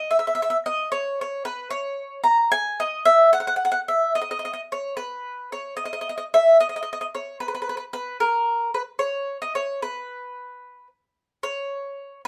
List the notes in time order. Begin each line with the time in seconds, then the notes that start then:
Already playing: D#5
0.11 E5
0.19 E5
0.27 E5
0.35 E5
0.42 E5
0.50 E5
0.66 D#5
0.92 C#5
1.21 C#5
1.45 B4
1.70 C#5
2.24 A#5
2.52 G#5
2.80 D#5
3.05 E5
3.33 F#5
3.40 F#5
3.47 F#5
3.56 F#5
3.65 F#5
3.72 F#5
3.88 E5
4.15 D#5
4.22 D#5
4.31 D#5
4.39 D#5
4.45 D#5
4.53 D#5
4.72 C#5
4.97 B4
5.52 C#5
5.77 D#5
5.85 D#5
5.93 D#5
6.01 D#5
6.09 D#5
6.18 D#5
6.34 E5
6.60 D#5
6.69 D#5
6.76 D#5
6.83 D#5
6.93 D#5
7.01 D#5
7.15 C#5
7.40 B4
7.48 B4
7.55 B4
7.62 B4
7.69 B4
7.77 B4
7.93 B4
8.20 A#4
8.74 B4
8.99 C#5
9.42 D#5
9.55 C#5
9.82 B4
11.43 C#5